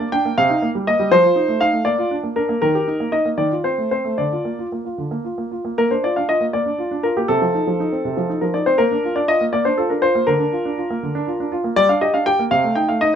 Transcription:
grand piano
0.00 A#3
0.12 D4 G5
0.25 A#3
0.38 C3 F5
0.50 D#4
0.62 A#3
0.75 G3
0.87 A#3 D#5
1.00 G3
1.11 F3 C5
1.24 F4
1.36 D#4
1.48 A3
1.61 D#4 F5
1.73 A3
1.85 A#3 D5
1.98 F4
2.11 D4
2.23 A#3
2.36 D4 A#4
2.49 A#3
2.62 D#3 A#4
2.75 G4
2.88 D#4
3.00 A#3
3.12 D#4 D#5
3.25 A#3
3.38 D#3 D5
3.51 F4
3.64 C4 C5
3.78 A3
3.91 C4 C5
4.05 A3
4.18 D3 D5
4.32 F4
4.45 A#3
4.59 F4
4.72 A#3
4.85 F4
4.98 D3
5.11 A#3
5.25 F4
5.38 A#3
5.51 F4
5.65 A#3
5.78 A#3 A#4
5.91 D4 C5
6.04 F4 D5
6.16 D4 F5
6.29 F4 D#5
6.41 A#3
6.53 A#3 D5
6.66 D4
6.78 F4
6.91 D4
7.03 F4 A#4
7.17 A#3 G4
7.28 C3 A4
7.42 F3
7.55 D#4
7.67 F3
7.80 D#4
7.92 C4
8.05 C3
8.17 F3
8.30 D#4
8.41 F3 A#4
8.54 D#4 D5
8.66 C4 C5
8.78 A#3 A#4
8.91 D4
9.04 F4
9.16 D4 D5
9.28 F4 D#5
9.41 A#3
9.53 A#3 D5
9.65 D4 C5
9.78 F4 A4
9.89 D4 A#4
10.02 F4 C5
10.15 A#3
10.27 D3 A#4
10.40 D4
10.52 F4
10.65 D4
10.78 F4
10.90 A#3
11.03 D3
11.15 D4
11.27 F4
11.40 D4
11.52 F4
11.64 A#3
11.76 G3 D5
11.89 D4 F5
12.01 G4 D#5
12.14 D4 F5
12.26 G4 G5
12.39 A#3
12.51 C3 F5
12.64 A3
12.75 D#4 G5
12.89 A3 F5
13.01 D#4 D#5

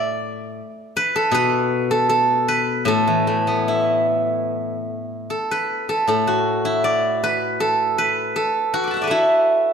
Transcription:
guzheng
Already playing: A2 D5 E5 F#5
0.97 B4
1.16 A4
1.31 B2 B4
1.91 A4
2.09 A4
2.48 B4
2.85 A2 A4
3.07 E3
3.27 A3
3.47 B3
3.68 E4
5.30 A4
5.51 B4
5.89 A4
6.08 A2 A4
6.27 F#4
6.65 E4
6.84 D5
7.24 B4
7.60 A4
7.98 B4
8.36 A4
8.74 F#4
8.84 B5 D6
8.91 F#5 A5
8.97 E5
9.01 B4 D5
9.07 E4 F#4 A4

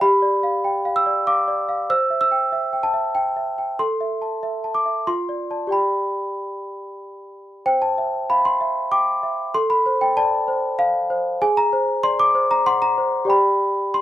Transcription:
celesta
0.01 G4 B5
0.22 D5
0.43 F5
0.64 G5
0.85 F5
0.96 E6
1.06 D5
1.27 F5 D6
1.48 D5
1.69 F5
1.90 C5 E6
2.10 E5
2.21 E6
2.32 G5
2.52 E5
2.73 G5
2.83 A5
2.94 E5
3.15 G5
3.36 E5
3.58 G5
3.79 A4 C6
4.01 E5
4.22 A5
4.43 E5
4.64 A5
4.75 D6
4.86 E5
5.07 F4 C6
5.29 D5
5.51 D5 A5
5.67 G4 D5 G5
5.72 B5
7.66 C5 G5
7.82 A5
7.98 E5
8.29 F5 B5
8.45 C6
8.61 E5
8.92 G5 D6
9.23 E5
9.54 A4 C6
9.70 B5
9.86 C5
10.01 G5
10.17 D5 A5
10.48 C5
10.79 F5
11.10 C5
11.42 G#4 G#5
11.57 A#5
11.73 C5
12.03 D5 C6
12.20 D6
12.35 C5
12.51 A#5
12.66 F#5 C6
12.82 A#5
12.98 C5
13.25 G4 D5 G5
13.30 B5
13.94 C6

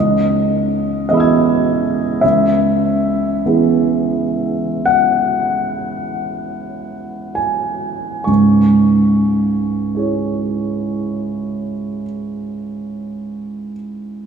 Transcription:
grand piano
Already playing: C#2 D#5
1.09 E3 B3 E4 G#4 D#5 E5
1.14 B5 E6
1.20 G#6
2.21 C#2 E5
3.45 E3 B3 E4 G#4
4.86 F#5
7.35 G#5
8.24 C#2 G#2 C#6
9.95 E4 G#4 C#5

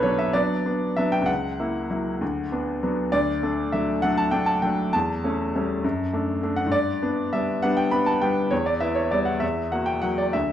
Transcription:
grand piano
Already playing: B1 B3 D4 A4 B4 C#5
0.03 F#3 B3 D4 C#5
0.19 E5
0.33 F#3 B3 D4 D5
0.66 B3 D4
0.97 F#3 B3 D4 E5
1.12 G5
1.22 C#2
1.26 F#5
1.60 A#3 E4
1.90 F#3 A#3 E4
2.21 D2
2.52 B3 D4
2.83 F#3 B3 D4
3.12 D2 D5
3.43 A3 D4
3.72 F#3 A3 D4 E5
4.02 F#3 A3 D4 F#5
4.18 A5
4.31 A3 D4 G5
4.46 A5
4.62 F#3 A3 D4 G5
4.93 E2 A5
5.24 A3 C#4
5.55 G3 A3 C#4
5.84 F#2
6.13 A3 D4
6.43 A3 D4
6.56 F#5
6.66 G2
6.72 D5
7.02 B3 D4
7.33 G3 B3 D4 E5
7.63 G3 B3 D4 F#5
7.77 G5
7.91 B3 D4 B5
8.06 A5
8.22 G3 B3 D4 G5
8.51 E2 C#5
8.66 D5
8.80 B3 E4 E5
8.95 C#5
9.11 G3 B3 E4 D5
9.25 F#5
9.40 E2 E5
9.72 A#3 F#4 F#5
9.86 G5
10.02 F#3 A#3 F#4 F#5
10.18 D5
10.33 D2 E5

